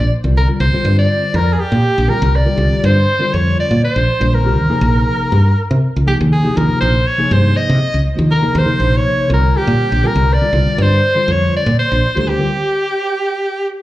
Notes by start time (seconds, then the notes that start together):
Already playing: D5
0.24 C2 D3 G3 C4 F4 A#4
0.37 A#4
0.48 D3 G3 C4 F4 A#4
0.60 C2 C5
0.73 D3 G3 C4 F4 C5, muted fretless electric bass stroke
0.85 G2
0.99 D5
1.03 D5
1.34 F2 A#4
1.39 A#4
1.53 G#4
1.59 G4 G#4
1.63 G4
1.72 A#2
1.98 A#1
2.07 D3 G3 C4 F4 A#4
2.14 A#4
2.22 C2
2.36 D5
2.45 D3 G3 C4 F4 A#4
2.55 C2 D3 G3 C4 F4 G4
2.73 muted fretless electric bass stroke
2.84 G2 C5
3.19 D3 G3 C4 F4 A#4
3.33 F2 C#5
3.60 D5
3.71 A#2
3.85 C5
3.96 A#1
4.20 A#1 D3 G3 C4 F4 A#4
4.34 A#4
4.44 D3 G3 C4 F4 G4
4.57 D#2
4.69 C3 F3 A#3 D#4 G#4, muted fretless electric bass stroke
4.81 A#1
5.32 G2
5.71 C3
5.96 C#2
6.06 C3 F3 A#3 D#4 G4 G#4
6.21 D#2
6.32 G#4
6.43 C3 F3 A#3 D#4 G4
6.54 D#2 C3 F3 A#3 D#4 F4 A#4
6.71 muted fretless electric bass stroke
6.80 A#1 C5
7.07 C#5
7.18 C3 F3 A#3 D#4 G#4
7.31 G2 C5
7.57 D#5
7.69 C3
7.94 C#2
8.16 D#2 C3 F3 A#3 D#4 F4
8.31 A#4
8.41 C3 F3 A#3 D#4 G#4
8.55 D#2 C5
8.65 C3 F3 A#3 D#4 A#4, muted fretless electric bass stroke
8.80 A#1
8.97 C#5
9.28 C2 D3 G3 C4 F4 A#4
9.33 A#4
9.57 G4
9.67 A#2
9.92 A#1
10.03 D3 G3 C4 F4 A#4
10.07 A#4
10.16 C2
10.33 D5
10.41 D3 G3 C4 F4 A#4
10.53 C2 D3 G3 C4 F4 A#4
10.67 muted fretless electric bass stroke
10.78 G2 C5
10.83 C5
11.15 D3 G3 C4 F4 C5
11.28 F2 C#5
11.33 C#5
11.55 D5
11.66 A#2
11.79 C5
11.92 A#1
12.15 D2 D3 G3 C4 F4 G4
12.28 G4
12.38 D3 G3 C4 F4 A#4